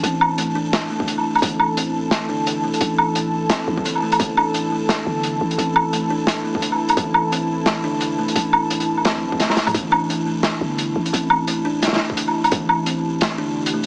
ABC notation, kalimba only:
X:1
M:4/4
L:1/8
Q:"Swing 16ths" 1/4=173
K:Am
V:1 name="Kalimba"
C2 A, D z A,3- | A, z C2 A, D z A,- | A,3 z C z E, A, | A, D z A,4 z |
C2 A, D z A,3- | A, z C2 A, D z A,- | A,3 z C z A, A, | A, D z A,4 z |
C2 A, D z A,3- | A, z C2 A, D z A, |]